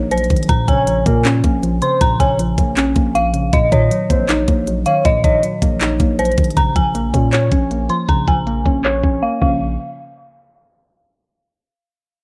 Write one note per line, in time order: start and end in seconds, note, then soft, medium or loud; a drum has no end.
0.00 0.29 A#1 loud
0.00 0.11 D#3 medium
0.00 0.10 F#3 medium
0.00 0.49 A#3 medium
0.00 0.49 D#4 loud
0.11 0.49 F#3 medium
0.11 0.47 C5 medium
0.11 closed hi-hat medium
0.18 closed hi-hat medium
0.24 closed hi-hat soft
0.30 0.48 A#1 loud
0.30 0.49 D#3 medium
0.30 kick loud
0.30 closed hi-hat medium
0.30 open hi-hat medium
0.36 closed hi-hat medium
0.43 closed hi-hat medium
0.49 0.67 A#1 loud
0.49 1.44 A#2 loud
0.49 0.67 A#5 loud
0.49 kick loud
0.49 closed hi-hat medium
0.68 1.05 A#1 loud
0.68 1.63 C#3 medium
0.68 1.04 C#5 medium
0.68 1.78 G#5 medium
0.68 kick loud
0.68 closed hi-hat medium
0.87 1.62 F3 medium
0.87 closed hi-hat medium
1.06 1.43 A#2 loud
1.06 1.43 A#3 medium
1.06 1.24 A#4 medium
1.06 kick medium
1.06 closed hi-hat medium
1.25 2.20 C#4 loud
1.25 clap loud
1.25 closed hi-hat medium
1.44 1.81 A#1 loud
1.44 2.39 A#3 medium
1.44 kick loud
1.44 closed hi-hat medium
1.63 2.38 F3 medium
1.63 closed hi-hat medium
1.82 2.19 C#3 medium
1.82 2.00 C5 medium
1.82 2.00 C6 medium
1.82 closed hi-hat medium
2.01 2.19 A#1 loud
2.01 2.96 A#2 medium
2.01 2.19 A#5 medium
2.01 kick loud
2.01 closed hi-hat medium
2.20 2.57 A#1 loud
2.20 3.15 C#3 medium
2.20 2.38 C#5 medium
2.20 3.11 G#5 medium
2.20 kick loud
2.20 closed hi-hat medium
2.39 3.14 F3 loud
2.39 closed hi-hat medium
2.58 2.95 A#1 loud
2.58 2.95 A#3 medium
2.58 kick medium
2.58 closed hi-hat medium
2.77 3.53 C#4 loud
2.77 clap loud
2.77 closed hi-hat medium
2.96 3.51 A#1 loud
2.96 3.53 A#3 medium
2.96 kick loud
2.96 closed hi-hat medium
3.15 3.53 F3 medium
3.15 3.51 F5 medium
3.15 closed hi-hat medium
3.34 3.53 C#3 medium
3.34 closed hi-hat medium
3.53 3.71 A#1 loud
3.53 4.48 A#2 loud
3.53 3.71 D#5 medium
3.53 kick loud
3.53 closed hi-hat medium
3.72 3.90 A#2 loud
3.72 4.67 D#3 medium
3.72 4.82 C#5 medium
3.72 4.08 D#5 medium
3.72 kick loud
3.72 closed hi-hat medium
3.91 4.66 F#3 medium
3.91 closed hi-hat loud
4.10 4.46 A#1 loud
4.10 4.47 A#3 medium
4.10 4.28 C5 medium
4.10 kick medium
4.10 closed hi-hat medium
4.29 5.24 D#4 loud
4.29 clap loud
4.29 closed hi-hat medium
4.48 4.84 A#1 loud
4.48 5.43 A#3 medium
4.48 kick loud
4.48 closed hi-hat medium
4.67 5.42 F#3 medium
4.67 closed hi-hat medium
4.86 5.23 D#3 medium
4.86 5.04 C#5 medium
4.86 5.04 F5 medium
4.86 closed hi-hat medium
5.05 5.23 A#1 loud
5.05 6.00 A#2 loud
5.05 5.23 D#5 loud
5.05 kick loud
5.05 closed hi-hat medium
5.24 5.42 A#1 loud
5.24 6.19 D#3 medium
5.24 6.15 C#5 medium
5.24 5.42 D#5 medium
5.24 kick loud
5.24 closed hi-hat medium
5.43 6.18 F#3 medium
5.43 closed hi-hat medium
5.62 5.98 A#1 loud
5.62 5.99 A#3 medium
5.62 kick medium
5.62 closed hi-hat medium
5.81 6.57 D#4 loud
5.81 clap loud
5.81 closed hi-hat medium
6.00 6.36 A#1 loud
6.00 6.57 A#3 medium
6.00 kick loud
6.00 closed hi-hat medium
6.19 6.57 F#3 medium
6.19 6.55 C5 medium
6.19 closed hi-hat medium
6.25 closed hi-hat medium
6.32 closed hi-hat soft
6.38 6.56 A#1 loud
6.38 6.57 D#3 medium
6.38 kick loud
6.38 closed hi-hat medium
6.38 open hi-hat medium
6.44 closed hi-hat medium
6.50 closed hi-hat medium
6.56 6.75 A#1 loud
6.56 7.52 C#3 medium
6.56 6.75 A#5 medium
6.56 kick loud
6.56 closed hi-hat medium
6.76 7.12 A#1 loud
6.76 7.71 F3 medium
6.76 7.86 G#5 medium
6.76 kick loud
6.76 closed hi-hat medium
6.95 7.70 A#3 loud
6.95 closed hi-hat medium
7.14 7.50 A#2 loud
7.14 7.51 C#4 medium
7.14 kick medium
7.14 closed hi-hat medium
7.33 8.28 C#5 loud
7.33 clap loud
7.33 closed hi-hat medium
7.51 7.88 A#1 loud
7.51 8.47 C#4 medium
7.51 kick loud
7.51 closed hi-hat medium
7.71 8.46 A#3 medium
7.71 closed hi-hat medium
7.89 8.26 F3 medium
7.89 8.08 C6 medium
7.89 closed hi-hat medium
8.09 8.27 A#1 loud
8.09 9.04 C#3 medium
8.09 8.27 A#5 medium
8.09 kick loud
8.09 closed hi-hat medium
8.28 8.64 A#1 loud
8.28 9.23 F3 medium
8.28 9.19 G#5 medium
8.28 kick loud
8.28 closed hi-hat medium
8.47 9.21 A#3 medium
8.47 closed hi-hat medium
8.66 9.02 A#1 loud
8.66 9.02 C#4 medium
8.66 kick medium
8.66 closed hi-hat medium
8.85 9.42 C#5 loud
8.85 clap loud
8.85 closed hi-hat medium
9.03 9.22 A#1 loud
9.03 9.40 C#4 medium
9.03 kick loud
9.03 closed hi-hat medium
9.23 9.40 A#3 medium
9.23 9.40 F5 medium
9.42 9.77 A#1 loud
9.42 9.59 C#3 medium
9.42 9.59 F3 medium
9.42 9.59 A#3 medium
9.42 9.59 C#4 medium
9.42 9.59 F5 medium
9.42 kick loud
9.42 crash medium